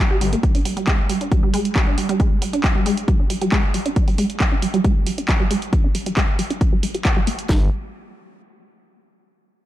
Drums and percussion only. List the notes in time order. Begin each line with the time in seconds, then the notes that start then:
0.21 open hi-hat
0.33 closed hi-hat
0.43 kick, closed hi-hat
0.55 open hi-hat
0.65 open hi-hat
0.77 closed hi-hat
0.87 kick, clap, closed hi-hat
1.10 open hi-hat
1.21 closed hi-hat
1.32 kick, closed hi-hat
1.54 open hi-hat
1.65 closed hi-hat
1.76 kick, clap, closed hi-hat
1.98 open hi-hat
2.09 closed hi-hat
2.20 kick, closed hi-hat
2.42 open hi-hat
2.53 closed hi-hat
2.64 kick, clap, open hi-hat
2.86 open hi-hat
2.97 closed hi-hat
3.08 kick, closed hi-hat
3.30 open hi-hat
3.41 closed hi-hat
3.52 kick, clap, closed hi-hat
3.74 open hi-hat
3.86 closed hi-hat
3.96 kick, closed hi-hat
4.08 open hi-hat
4.18 open hi-hat
4.30 closed hi-hat
4.40 kick, clap, closed hi-hat
4.62 open hi-hat
4.74 closed hi-hat
4.84 kick, closed hi-hat
5.07 open hi-hat
5.18 closed hi-hat
5.29 kick, clap, closed hi-hat
5.51 open hi-hat
5.62 closed hi-hat
5.73 kick, closed hi-hat
5.95 open hi-hat
6.06 closed hi-hat
6.17 kick, clap, open hi-hat
6.39 open hi-hat
6.50 closed hi-hat
6.61 kick, closed hi-hat
6.83 open hi-hat
6.95 closed hi-hat
7.05 kick, clap, closed hi-hat
7.27 open hi-hat
7.39 closed hi-hat
7.49 kick, snare